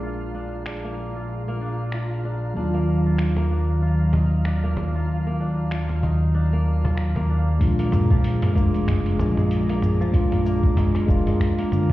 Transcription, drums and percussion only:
0.66 finger snap loud
1.92 finger snap loud
3.18 finger snap loud
3.36 cajon slap medium
4.13 cajon bass medium
4.13 cajon slap medium
4.45 finger snap medium
4.77 cajon bass medium
4.77 cajon slap soft
5.71 finger snap loud
5.89 cajon slap medium
6.03 cajon bass medium
6.85 cajon bass medium
6.97 finger snap medium
7.16 cajon bass medium
7.48 cajon slap soft
7.61 kick loud
7.61 open hi-hat medium
7.61 shaker soft
7.79 open hi-hat soft
7.79 shaker soft
7.92 cajon bass medium
7.92 mid tom medium
7.92 shaker medium
8.11 kick loud
8.11 shaker soft
8.24 open hi-hat medium
8.24 shaker soft
8.42 cajon slap medium
8.42 mid tom medium
8.42 open hi-hat soft
8.56 kick loud
8.56 shaker medium
8.74 open hi-hat soft
8.74 shaker soft
8.87 finger snap medium
8.87 kick medium
8.87 mid tom medium
8.87 open hi-hat medium
8.87 shaker soft
9.06 open hi-hat soft
9.19 cajon bass medium
9.19 cajon slap medium
9.19 shaker medium
9.37 mid tom medium
9.37 shaker soft
9.51 open hi-hat medium
9.51 shaker soft
9.69 open hi-hat soft
9.82 cajon slap soft
9.82 mid tom medium
9.82 shaker medium
10.01 shaker soft
10.14 kick loud
10.14 open hi-hat medium
10.14 shaker soft
10.32 mid tom medium
10.32 open hi-hat soft
10.32 shaker soft
10.46 shaker medium
10.63 kick loud
10.63 shaker soft
10.77 cajon bass medium
10.77 mid tom medium
10.77 open hi-hat medium
10.77 shaker soft
10.95 cajon slap medium
10.95 open hi-hat soft
11.09 kick loud
11.09 shaker medium
11.27 mid tom medium
11.27 open hi-hat soft
11.27 shaker soft
11.40 finger snap medium
11.40 kick medium
11.40 open hi-hat medium
11.40 shaker soft
11.59 open hi-hat soft
11.72 mid tom medium
11.72 shaker medium

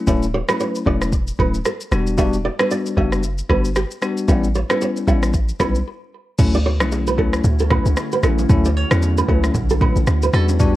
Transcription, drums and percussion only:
0.08 kick loud
0.08 shaker medium
0.23 shaker medium
0.49 cross-stick loud
0.49 shaker medium
0.60 shaker medium
0.76 shaker soft
0.87 kick medium
1.02 cross-stick medium
1.02 shaker medium
1.13 kick medium
1.13 shaker medium
1.28 shaker soft
1.39 kick medium
1.54 shaker medium
1.65 cross-stick medium
1.65 shaker medium
1.81 shaker medium
1.92 cross-stick medium
1.92 shaker soft
2.07 shaker medium
2.18 kick loud
2.18 shaker medium
2.33 shaker medium
2.59 cross-stick loud
2.59 shaker soft
2.71 shaker medium
2.86 shaker soft
2.97 kick medium
3.12 cross-stick medium
3.12 shaker medium
3.23 shaker medium
3.38 shaker soft
3.49 kick medium
3.49 cross-stick medium
3.65 shaker medium
3.76 cross-stick medium
3.76 shaker medium
3.91 shaker medium
4.02 cross-stick medium
4.02 shaker soft
4.17 shaker medium
4.29 kick loud
4.29 shaker medium
4.44 shaker medium
4.55 shaker soft
4.70 cross-stick loud
4.70 shaker soft
4.81 shaker medium
4.97 shaker medium
5.08 kick medium
5.08 shaker medium
5.23 cross-stick medium
5.23 shaker medium
5.34 kick medium
5.34 shaker medium
5.49 shaker soft
5.60 kick medium
5.60 cross-stick medium
5.60 shaker medium
5.75 shaker medium
6.39 kick loud
6.39 crash medium
6.39 low conga medium
6.39 shaker medium
6.54 shaker medium
6.80 cross-stick loud
6.80 low bongo medium
6.80 shaker soft
6.92 high bongo medium
6.92 shaker medium
7.07 low bongo medium
7.07 shaker medium
7.18 kick medium
7.33 cross-stick medium
7.33 shaker medium
7.44 low conga medium
7.44 shaker medium
7.59 shaker medium
7.70 kick medium
7.70 cross-stick medium
7.70 low bongo medium
7.70 low conga medium
7.86 shaker medium
7.97 cross-stick medium
7.97 high bongo medium
7.97 shaker medium
8.12 shaker medium
8.23 cross-stick medium
8.23 high bongo medium
8.23 shaker soft
8.38 low bongo medium
8.38 shaker medium
8.50 kick loud
8.50 low conga medium
8.50 shaker medium
8.65 shaker medium
8.91 cross-stick loud
8.91 low bongo medium
8.91 shaker medium
9.02 high bongo medium
9.02 shaker medium
9.18 low bongo medium
9.18 shaker medium
9.29 kick medium
9.44 cross-stick medium
9.44 shaker medium
9.55 kick medium
9.55 low conga medium
9.55 shaker medium
9.70 shaker soft
9.81 kick medium
9.81 low bongo medium
9.81 low conga medium
9.96 shaker medium
10.07 cross-stick medium
10.07 high bongo medium
10.07 shaker medium
10.23 shaker medium
10.34 cross-stick medium
10.34 high bongo medium
10.34 shaker soft
10.49 low bongo medium
10.49 shaker medium
10.60 kick loud
10.60 low conga medium
10.60 shaker medium

